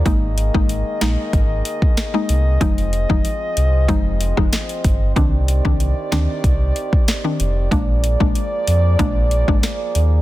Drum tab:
HH |x-x-x-x-x-x-x-x-|xxx-x-x-x-x-xxx-|x-x-x-x-x-x-x-x-|x-x-x-x-x-x-x-x-|
SD |------o-----o---|-----------ro---|------o-----o---|------------o---|
BD |o--o----o--o----|o--o----o--o--o-|o--o----o--o----|o--o----o--o----|